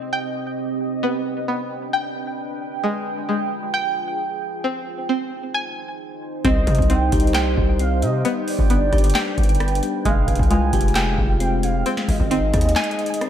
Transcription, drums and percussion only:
6.45 kick, closed hi-hat
6.67 kick, closed hi-hat
6.75 kick, closed hi-hat
6.82 closed hi-hat
6.90 closed hi-hat
7.12 kick, closed hi-hat
7.20 closed hi-hat
7.27 closed hi-hat
7.34 snare, clap, closed hi-hat
7.57 kick
7.79 closed hi-hat
8.02 closed hi-hat
8.25 closed hi-hat
8.48 open hi-hat
8.59 kick
8.70 closed hi-hat
8.93 kick, cross-stick, closed hi-hat
8.98 closed hi-hat
9.04 closed hi-hat
9.10 closed hi-hat
9.15 snare, clap, closed hi-hat
9.38 kick, closed hi-hat
9.43 closed hi-hat
9.49 closed hi-hat
9.55 closed hi-hat
9.60 cross-stick, closed hi-hat
9.68 closed hi-hat
9.75 closed hi-hat
9.83 closed hi-hat
10.05 kick, closed hi-hat
10.28 kick, closed hi-hat
10.35 kick, closed hi-hat
10.43 closed hi-hat
10.51 closed hi-hat
10.73 kick, closed hi-hat
10.81 closed hi-hat
10.88 closed hi-hat
10.95 snare, clap, closed hi-hat
11.18 kick
11.40 closed hi-hat
11.63 closed hi-hat
11.86 closed hi-hat
11.97 snare
12.08 kick, open hi-hat
12.20 kick
12.31 closed hi-hat
12.54 kick, cross-stick, closed hi-hat
12.61 closed hi-hat
12.69 closed hi-hat
12.76 snare, clap, closed hi-hat
12.84 closed hi-hat
12.91 closed hi-hat
12.99 closed hi-hat
13.06 closed hi-hat
13.14 closed hi-hat
13.21 cross-stick, closed hi-hat

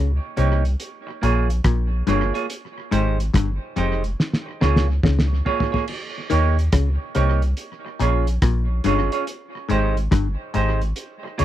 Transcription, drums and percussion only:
0.37 closed hi-hat
0.65 closed hi-hat
0.80 closed hi-hat
1.23 closed hi-hat
1.50 closed hi-hat
1.64 kick, cross-stick, closed hi-hat
2.07 cross-stick, closed hi-hat
2.35 closed hi-hat
2.50 closed hi-hat
2.92 closed hi-hat
3.20 closed hi-hat
3.34 kick, cross-stick, closed hi-hat
3.76 closed hi-hat
4.04 closed hi-hat
4.20 snare
4.33 snare
4.62 snare
4.76 snare
5.03 kick, snare
5.19 snare
5.46 floor tom
5.60 floor tom
5.74 floor tom
5.88 crash
6.30 closed hi-hat
6.59 closed hi-hat
6.72 kick, cross-stick, closed hi-hat
7.15 cross-stick, closed hi-hat
7.42 closed hi-hat
7.57 closed hi-hat
8.00 closed hi-hat
8.27 closed hi-hat
8.42 kick, cross-stick, closed hi-hat
8.84 closed hi-hat
9.12 closed hi-hat
9.27 closed hi-hat
9.70 closed hi-hat
9.97 closed hi-hat
10.12 kick, cross-stick, closed hi-hat
10.54 closed hi-hat
10.81 closed hi-hat
10.96 closed hi-hat
11.39 closed hi-hat

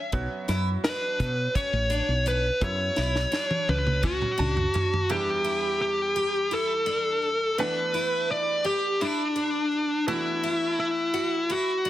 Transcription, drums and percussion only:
0.12 kick, closed hi-hat
0.49 snare, closed hi-hat
0.84 snare, closed hi-hat
1.20 kick, closed hi-hat
1.55 kick, closed hi-hat
1.92 closed hi-hat
2.27 closed hi-hat
2.61 kick, closed hi-hat
2.97 snare
3.16 snare
3.33 snare
3.51 high tom
3.69 high tom
3.87 mid tom
4.04 kick, mid tom
4.22 mid tom
4.40 mid tom
4.57 floor tom
4.75 floor tom
4.94 floor tom

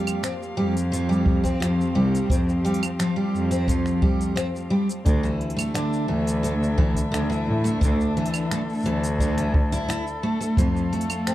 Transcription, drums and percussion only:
0.07 open hi-hat, claves, shaker
0.24 finger snap, open hi-hat, shaker
0.43 shaker
0.77 open hi-hat, shaker
0.93 open hi-hat, shaker
1.12 shaker
1.26 kick
1.44 kick, open hi-hat, shaker
1.62 finger snap, open hi-hat, shaker
1.81 shaker
2.15 open hi-hat, shaker
2.30 kick, open hi-hat, shaker
2.49 shaker
2.66 open hi-hat
2.74 open hi-hat
2.83 open hi-hat, claves, shaker
3.00 finger snap, open hi-hat, shaker
3.36 shaker
3.51 open hi-hat, shaker
3.68 kick, open hi-hat, shaker
3.86 finger snap, shaker
4.02 kick
4.21 open hi-hat, shaker
4.37 finger snap, open hi-hat, shaker
4.56 shaker
4.89 open hi-hat, shaker
5.06 kick, open hi-hat, shaker
5.24 shaker
5.41 open hi-hat
5.50 open hi-hat
5.59 open hi-hat, claves, shaker
5.75 finger snap, open hi-hat, shaker
5.93 shaker
6.27 open hi-hat, shaker
6.44 open hi-hat, shaker
6.63 shaker
6.78 kick
6.95 kick, open hi-hat, shaker
7.14 finger snap, open hi-hat, shaker
7.32 shaker
7.65 open hi-hat, shaker
7.81 kick, open hi-hat, shaker
8.01 shaker
8.17 open hi-hat
8.26 open hi-hat
8.34 open hi-hat, claves, shaker
8.51 finger snap, open hi-hat, shaker
8.70 shaker
8.73 shaker
8.75 shaker
8.77 shaker
8.80 shaker
8.83 shaker
8.85 open hi-hat, shaker
9.04 open hi-hat, shaker
9.19 kick, shaker
9.38 finger snap, open hi-hat, shaker
9.54 kick
9.72 open hi-hat, shaker
9.90 finger snap, open hi-hat, shaker
10.07 shaker
10.41 open hi-hat, shaker
10.57 kick, open hi-hat, shaker
10.77 shaker
10.93 open hi-hat
11.01 open hi-hat
11.10 open hi-hat, claves, shaker
11.27 finger snap, open hi-hat, shaker

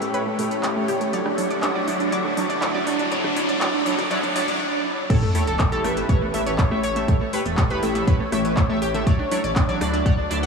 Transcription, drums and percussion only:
0.02 closed hi-hat
0.14 closed hi-hat
0.39 open hi-hat
0.51 closed hi-hat
0.63 clap, closed hi-hat
0.88 open hi-hat
1.01 closed hi-hat
1.13 closed hi-hat
1.26 cross-stick
1.38 open hi-hat
1.51 closed hi-hat
1.63 clap, closed hi-hat
1.88 open hi-hat
2.00 closed hi-hat
2.12 closed hi-hat
2.25 cross-stick
2.37 open hi-hat
2.50 closed hi-hat
2.62 clap, closed hi-hat
2.87 open hi-hat
2.99 closed hi-hat
3.12 closed hi-hat
3.24 cross-stick
3.36 open hi-hat
3.49 closed hi-hat
3.61 clap, closed hi-hat
3.86 open hi-hat
3.99 cross-stick, closed hi-hat
4.11 closed hi-hat
4.23 closed hi-hat
4.36 open hi-hat
4.48 closed hi-hat
5.10 kick, closed hi-hat, crash
5.35 open hi-hat
5.47 closed hi-hat
5.59 kick, clap, closed hi-hat
5.72 closed hi-hat
5.84 cross-stick, open hi-hat
5.97 closed hi-hat
6.09 kick, closed hi-hat
6.34 open hi-hat
6.47 closed hi-hat
6.58 kick, clap, closed hi-hat
6.71 cross-stick
6.83 open hi-hat
6.96 closed hi-hat
7.08 kick, closed hi-hat
7.33 open hi-hat
7.46 closed hi-hat
7.57 kick, clap, closed hi-hat
7.70 closed hi-hat
7.83 open hi-hat
7.95 closed hi-hat
8.07 kick, closed hi-hat
8.32 cross-stick, open hi-hat
8.45 closed hi-hat
8.57 kick, clap, closed hi-hat
8.82 open hi-hat
8.95 closed hi-hat
9.07 kick, closed hi-hat
9.31 open hi-hat
9.44 closed hi-hat
9.56 kick, clap, closed hi-hat
9.69 closed hi-hat
9.81 cross-stick, open hi-hat
9.94 closed hi-hat
10.06 kick, closed hi-hat
10.31 open hi-hat

